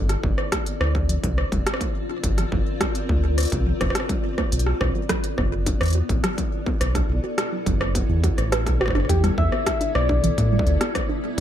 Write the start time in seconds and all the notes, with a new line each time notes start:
Already playing: G1 C4 D5
0.09 cross-stick, closed hi-hat
0.23 G1 G3, kick
0.38 cross-stick
0.52 A#3, kick, cross-stick, closed hi-hat
0.59 F4
0.66 closed hi-hat
0.81 D2 D4, cross-stick
0.95 kick
1.09 F3, closed hi-hat
1.23 C2 F3, kick, closed hi-hat
1.38 cross-stick
1.52 F1 G3, kick, closed hi-hat
1.58 A#4
1.67 cross-stick, closed hi-hat
1.74 cross-stick
1.81 A#3, kick, closed hi-hat
2.09 D4
2.23 G1, kick, closed hi-hat
2.38 F3, cross-stick, closed hi-hat
2.52 G1 F3, kick
2.81 G3, kick, cross-stick, closed hi-hat
2.95 closed hi-hat
3.09 D2 A#3, kick
3.38 D4, cross-stick, closed hi-hat
3.40 closed hi-hat
3.43 closed hi-hat
3.45 closed hi-hat
3.47 closed hi-hat
3.50 C2, kick, closed hi-hat
3.52 closed hi-hat
3.66 F3
3.81 F1 F3, kick, cross-stick, closed hi-hat
3.90 cross-stick
3.95 cross-stick, closed hi-hat
4.00 cross-stick
4.09 G3, kick, closed hi-hat
4.38 A#3, kick, cross-stick
4.52 B1 B3, closed hi-hat
4.59 closed hi-hat
4.67 F#4, cross-stick
4.81 B1, kick, cross-stick
4.95 F#3
5.09 F#3, kick, cross-stick, closed hi-hat
5.19 E4
5.24 closed hi-hat
5.38 F#1 B3, kick, cross-stick
5.66 D4, kick, closed hi-hat
5.80 E2 A4, cross-stick, closed hi-hat
5.83 closed hi-hat
5.86 closed hi-hat
5.88 closed hi-hat
5.90 closed hi-hat
5.93 F#4, closed hi-hat
6.09 A1, kick, closed hi-hat
6.24 F#3, cross-stick, closed hi-hat
6.38 F#3, kick, closed hi-hat
6.66 B3, kick
6.81 B1, cross-stick, closed hi-hat
6.95 D4, kick, cross-stick, closed hi-hat
7.09 B1
7.24 F#4
7.38 cross-stick, closed hi-hat
7.52 F#3
7.66 F#1 F#3, kick, closed hi-hat
7.81 cross-stick
7.95 B3, kick, closed hi-hat
8.09 E2
8.24 F#4, kick, closed hi-hat
8.38 A1, cross-stick, closed hi-hat
8.52 B4, cross-stick, closed hi-hat
8.66 B1, kick, cross-stick, closed hi-hat
8.81 A1 F#4, cross-stick
8.86 kick, cross-stick
8.90 cross-stick
8.95 F#1 D4, cross-stick
9.00 cross-stick
9.05 cross-stick
9.09 E2 G4, kick, closed hi-hat
9.24 G3, cross-stick, closed hi-hat
9.38 E2 E5, kick
9.52 B3, cross-stick
9.66 kick, cross-stick, closed hi-hat
9.81 D4, closed hi-hat
9.95 B1 D5, cross-stick
10.09 D4, kick
10.24 E3, closed hi-hat
10.38 A2, kick, closed hi-hat
10.52 G3
10.59 kick
10.66 D2, closed hi-hat
10.81 B3, cross-stick, closed hi-hat
10.95 kick, cross-stick, closed hi-hat
11.09 D4